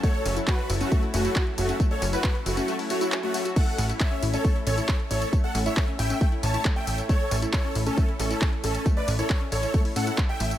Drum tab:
CC |----------------|----------------|x---------------|----------------|
HH |xxoxxxoxxxoxxxox|xxoxxxoxxooxxxox|xxoxxxoxxxoxxxox|xxoxxxoxxxoxxxox|
TB |x-xxx-xxx-xxx-xx|x-xxx-xxx-xxx-xx|x-xxx-xxx-xxx-xx|x-xxx-xxx-xxx-xx|
CP |----x-------x---|----x-------x---|----x-------x---|----x-------x---|
BD |o---o---o---o---|o---o-----------|o---o---o---o---|o---o---o---o---|

CC |----------------|----------------|
HH |xxoxxxoxxxoxxxox|xxoxxxoxxooxxxox|
TB |x-xxx-xxx-xxx-xx|x-xxx-xxx-xxx-xx|
CP |----x-------x---|----x-------x---|
BD |o---o---o---o---|o---o---o---o---|